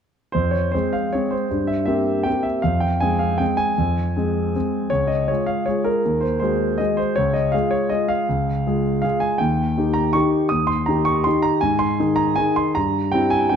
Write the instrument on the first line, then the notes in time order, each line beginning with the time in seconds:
grand piano
0.32 F2 C5
0.51 C#5
0.72 G#3 C4 G#4 C5
0.93 F5
1.13 G#3 C4 G#4 C#5
1.31 C5
1.51 G2
1.67 E5
1.86 A#3 C4 G4 E5
2.23 A#3 C4 G4 G5
2.43 E5
2.62 F2 F5
2.80 G5
3.00 G#3 C4 G#4 G#5
3.19 F5
3.38 G#3 C4 G#4 G5
3.57 G#5
3.78 F2
4.16 G#3 C4 G#4
4.56 G#3 C4 G#4
4.90 C#2 C#5
5.07 D#5
5.28 G#3 F4 G#4 C#5
5.46 F5
5.66 G#3 F4 G#4 C#5
5.84 A#4
6.05 D#2
6.21 C5
6.40 G#3 F#4 G#4 C5
6.78 G#3 F#4 G#4 D#5
6.97 C5
7.16 C#2 C#5
7.33 D#5
7.52 G#3 F4 G#4 F5
7.71 C#5
7.89 G#3 F4 G#4 D#5
8.08 F5
8.29 C#2
8.67 G#3 F4 G#4
9.02 G#3 F4 G#4 F5
9.20 G#5
9.38 D#2 G5
9.77 D#3 D#4 G4
9.94 A#5
10.13 D#3 D#4 G4 C#6
10.49 D#2 D#6
10.67 C6
10.86 D#3 D#4 G4 A#5
11.05 C#6
11.24 D#3 D#4 G4 C6
11.42 A#5
11.61 G#2 G#5
11.79 C6
12.00 D#3 D#4 G#4
12.16 A#5
12.36 D#3 D#4 G#4 G#5
12.56 C6
12.75 G2 A#5
13.12 G3 C4 E4 G5
13.30 G#5
13.49 G3 C4 E4 G5